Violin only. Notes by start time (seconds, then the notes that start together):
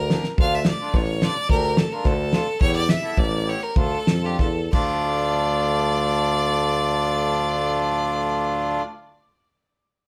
Already playing: A#4
0.41 F5
0.55 E5
0.68 D5
0.96 C#5
1.24 D5
1.51 A#4
1.78 A4
1.92 A#4
2.07 A4
2.61 C#5
2.76 D5
2.90 E5
3.18 D5
3.49 C#5
3.63 A#4
3.79 A4
4.25 G4
4.40 A4
4.73 D5